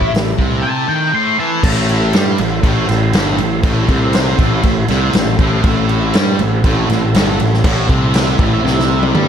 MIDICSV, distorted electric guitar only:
0, 0, Header, 1, 2, 480
1, 0, Start_track
1, 0, Key_signature, 0, "minor"
1, 0, Tempo, 500417
1, 1574, Time_signature, 4, 2, 24, 8
1, 8903, End_track
2, 0, Start_track
2, 0, Title_t, "Distorted electric guitar"
2, 0, Program_c, 0, 30
2, 0, Note_on_c, 0, 45, 75
2, 122, Note_off_c, 0, 45, 0
2, 133, Note_on_c, 0, 45, 70
2, 324, Note_off_c, 0, 45, 0
2, 364, Note_on_c, 0, 48, 98
2, 842, Note_off_c, 0, 48, 0
2, 850, Note_on_c, 0, 51, 102
2, 1084, Note_off_c, 0, 51, 0
2, 1090, Note_on_c, 0, 45, 96
2, 1325, Note_off_c, 0, 45, 0
2, 1336, Note_on_c, 0, 52, 90
2, 1568, Note_off_c, 0, 52, 0
2, 1573, Note_on_c, 0, 45, 119
2, 2048, Note_off_c, 0, 45, 0
2, 2050, Note_on_c, 0, 55, 106
2, 2284, Note_on_c, 0, 45, 83
2, 2286, Note_off_c, 0, 55, 0
2, 2482, Note_off_c, 0, 45, 0
2, 2525, Note_on_c, 0, 45, 95
2, 2756, Note_off_c, 0, 45, 0
2, 2768, Note_on_c, 0, 45, 74
2, 2964, Note_off_c, 0, 45, 0
2, 3006, Note_on_c, 0, 43, 94
2, 3245, Note_off_c, 0, 43, 0
2, 3253, Note_on_c, 0, 45, 72
2, 3447, Note_off_c, 0, 45, 0
2, 3490, Note_on_c, 0, 45, 107
2, 3726, Note_off_c, 0, 45, 0
2, 3730, Note_on_c, 0, 48, 89
2, 4206, Note_off_c, 0, 48, 0
2, 4215, Note_on_c, 0, 45, 120
2, 4448, Note_off_c, 0, 45, 0
2, 4462, Note_on_c, 0, 45, 60
2, 4651, Note_off_c, 0, 45, 0
2, 4704, Note_on_c, 0, 48, 112
2, 4933, Note_off_c, 0, 48, 0
2, 4950, Note_on_c, 0, 45, 67
2, 5135, Note_off_c, 0, 45, 0
2, 5184, Note_on_c, 0, 45, 93
2, 5413, Note_off_c, 0, 45, 0
2, 5424, Note_on_c, 0, 45, 108
2, 5892, Note_off_c, 0, 45, 0
2, 5901, Note_on_c, 0, 55, 101
2, 6130, Note_off_c, 0, 55, 0
2, 6142, Note_on_c, 0, 45, 80
2, 6330, Note_off_c, 0, 45, 0
2, 6379, Note_on_c, 0, 45, 98
2, 6607, Note_off_c, 0, 45, 0
2, 6618, Note_on_c, 0, 45, 75
2, 6808, Note_off_c, 0, 45, 0
2, 6860, Note_on_c, 0, 43, 102
2, 7089, Note_off_c, 0, 43, 0
2, 7097, Note_on_c, 0, 45, 76
2, 7287, Note_off_c, 0, 45, 0
2, 7334, Note_on_c, 0, 45, 110
2, 7565, Note_off_c, 0, 45, 0
2, 7576, Note_on_c, 0, 48, 97
2, 8045, Note_off_c, 0, 48, 0
2, 8052, Note_on_c, 0, 45, 112
2, 8284, Note_off_c, 0, 45, 0
2, 8290, Note_on_c, 0, 48, 89
2, 8762, Note_off_c, 0, 48, 0
2, 8772, Note_on_c, 0, 55, 92
2, 8903, Note_off_c, 0, 55, 0
2, 8903, End_track
0, 0, End_of_file